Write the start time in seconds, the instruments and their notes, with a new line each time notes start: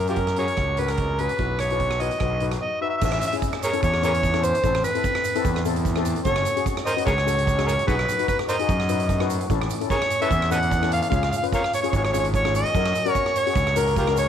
Already playing: fingered electric bass F#2
0.07 steel pan C#4 F#4 A#4, harmonica F4 G4 A#4, closed hi-hat
0.16 kick, closed hi-hat
0.27 cross-stick
0.36 steel pan C#4 F#4 A#4, harmonica G#4 A#4 C#5, closed hi-hat
0.48 closed hi-hat
0.57 fingered electric bass C#2, kick, cross-stick, closed hi-hat
0.77 steel pan C#4 F#4 A#4, harmonica B4, closed hi-hat
0.88 harmonica A#4, cross-stick, closed hi-hat
0.97 kick, closed hi-hat
1.19 steel pan C#4 F#4 G#4, harmonica B4, closed hi-hat
1.29 closed hi-hat
1.38 fingered electric bass B1, steel pan E4 F#4 B4, kick, closed hi-hat
1.59 harmonica C#5, cross-stick, closed hi-hat
1.70 steel pan E4 F#4 B4, closed hi-hat
1.80 kick, closed hi-hat
1.91 cross-stick
2.00 steel pan E4 F#4 B4, harmonica D#5, closed hi-hat
2.11 closed hi-hat
2.20 fingered electric bass B1, steel pan D#4 F#4 B4, kick, cross-stick, closed hi-hat
2.40 steel pan D#4 F#4 B4, closed hi-hat
2.52 cross-stick, closed hi-hat
2.62 harmonica D#5
2.81 steel pan D#4 F#4 B4, harmonica E5
2.90 harmonica E5
2.97 harmonica E5, crash
3.02 fingered electric bass A1, steel pan C#4 E4 A4, harmonica E5, kick, shaker
3.12 harmonica E5, cross-stick
3.20 harmonica E5, closed hi-hat, shaker
3.27 harmonica E5
3.32 steel pan C#4 E4 G#4, closed hi-hat
3.42 kick, closed hi-hat, shaker
3.53 cross-stick
3.62 harmonica G#4 A#4 C#5, closed hi-hat, shaker
3.73 steel pan C#4 E4 A4, closed hi-hat
3.83 fingered electric bass E2, harmonica C#5, kick, closed hi-hat, shaker
3.94 cross-stick
4.02 steel pan C#4 E4 B4, harmonica G#4 A#4 C#5, closed hi-hat, shaker
4.14 closed hi-hat, shaker
4.23 kick, closed hi-hat, shaker
4.33 steel pan C#4 E4 A4, cross-stick
4.43 harmonica C5, closed hi-hat, shaker
4.55 closed hi-hat
4.63 fingered electric bass A1, steel pan C4 E4 A4, kick, closed hi-hat, shaker
4.75 cross-stick
4.84 harmonica B4, closed hi-hat, shaker
4.95 steel pan C4 E4 A4, closed hi-hat
5.04 kick, closed hi-hat, shaker
5.15 cross-stick
5.24 closed hi-hat, shaker
5.35 steel pan C4 E4 A4, closed hi-hat
5.45 fingered electric bass E2, kick, closed hi-hat, shaker
5.56 cross-stick
5.65 steel pan C4 E4 A4, closed hi-hat, shaker
5.76 closed hi-hat, shaker
5.85 kick, closed hi-hat, shaker
5.96 steel pan C4 E4 A4, cross-stick
6.05 closed hi-hat, shaker
6.16 closed hi-hat
6.25 fingered electric bass F#1, steel pan C#4 F#4 A4, harmonica C#5, kick, closed hi-hat, shaker
6.36 cross-stick
6.45 closed hi-hat, shaker
6.56 steel pan C#4 F#4 G#4, closed hi-hat
6.66 kick, closed hi-hat, shaker
6.77 cross-stick
6.86 harmonica A#4 C5 D#5, closed hi-hat, shaker
6.97 steel pan C#4 F#4 B4, closed hi-hat
7.06 fingered electric bass C#2, harmonica G#4 A#4 C#5, kick, closed hi-hat, shaker
7.18 cross-stick
7.26 steel pan C#4 F#4 A4, closed hi-hat, shaker
7.38 closed hi-hat, shaker
7.47 kick, closed hi-hat, shaker
7.58 steel pan C#4 F#4 G#4, cross-stick
7.66 harmonica G#4 A#4 C#5, closed hi-hat, shaker
7.79 closed hi-hat
7.87 fingered electric bass B1, steel pan D#4 F#4 B4, harmonica F#4 G#4 B4, kick, closed hi-hat, shaker
7.99 cross-stick
8.09 closed hi-hat, shaker
8.19 steel pan D#4 F#4 B4, closed hi-hat
8.28 harmonica B4, kick, closed hi-hat, shaker
8.39 cross-stick
8.49 harmonica A#4 C5 D#5, closed hi-hat, shaker
8.59 steel pan D#4 F#4 G#4, closed hi-hat
8.69 fingered electric bass F#2, kick, closed hi-hat, shaker
8.80 cross-stick
8.89 steel pan D#4 F#4 B4, closed hi-hat, shaker
9.00 closed hi-hat
9.09 kick, closed hi-hat, shaker
9.20 steel pan D#4 F#4 B4, cross-stick
9.30 closed hi-hat, shaker
9.41 closed hi-hat
9.50 fingered electric bass A1, steel pan C#4 E4 A4, kick, closed hi-hat, shaker
9.62 cross-stick
9.70 closed hi-hat, shaker
9.81 steel pan C#4 E4 A4, closed hi-hat
9.90 harmonica G#4 A#4 C#5, kick, closed hi-hat, shaker
10.02 cross-stick
10.10 closed hi-hat, shaker
10.21 steel pan C#4 E4 A4, harmonica B4 C#5 E5, closed hi-hat
10.31 fingered electric bass E2, kick, closed hi-hat, shaker
10.42 cross-stick
10.51 steel pan C#4 E4 A4, harmonica B4 D#5 F#5, closed hi-hat, shaker
10.63 closed hi-hat, shaker
10.71 kick, closed hi-hat, shaker
10.82 steel pan C#4 E4 A4, cross-stick
10.92 harmonica F5, closed hi-hat
11.02 harmonica F5, closed hi-hat
11.10 fingered electric bass C#2, steel pan C#4 F4 G#4, harmonica F5, kick, closed hi-hat, shaker
11.16 harmonica F5
11.23 harmonica F5, cross-stick
11.31 harmonica F5, closed hi-hat, shaker
11.37 harmonica F5
11.43 steel pan C#4 F4 B4, closed hi-hat
11.53 harmonica A#4 C#5 F5, kick, closed hi-hat, shaker
11.64 cross-stick
11.73 harmonica C#5, closed hi-hat, shaker
11.82 steel pan C#4 F4 G#4, harmonica C#5, closed hi-hat
11.90 fingered electric bass G#1, harmonica C#5, kick, closed hi-hat
11.94 harmonica C#5, shaker
12.04 harmonica C#5, cross-stick
12.12 steel pan C#4 F4 G#4, harmonica C#5, closed hi-hat, shaker
12.19 harmonica C#5
12.25 closed hi-hat, shaker
12.34 harmonica C#5, kick, closed hi-hat, shaker
12.45 steel pan C#4 F4 G#4, cross-stick
12.55 harmonica D#5, closed hi-hat, shaker
12.65 closed hi-hat
12.75 fingered electric bass F#2, steel pan C#4 F#4 A#4, kick, closed hi-hat, shaker
12.86 cross-stick
12.95 closed hi-hat, shaker
13.06 steel pan C#4 F#4 A#4, closed hi-hat
13.12 harmonica C#5, kick, closed hi-hat, shaker
13.26 cross-stick
13.36 harmonica C#5, closed hi-hat, shaker
13.46 steel pan C#4 F#4 G#4, closed hi-hat
13.55 fingered electric bass C#2, kick, closed hi-hat, shaker
13.67 cross-stick
13.76 steel pan C#4 F#4 A#4, harmonica A#4, closed hi-hat, shaker
13.87 closed hi-hat, shaker
13.96 harmonica F4 G4 A#4, kick, closed hi-hat, shaker
14.07 steel pan C#4 F#4 A#4, cross-stick
14.17 harmonica C#5, closed hi-hat, shaker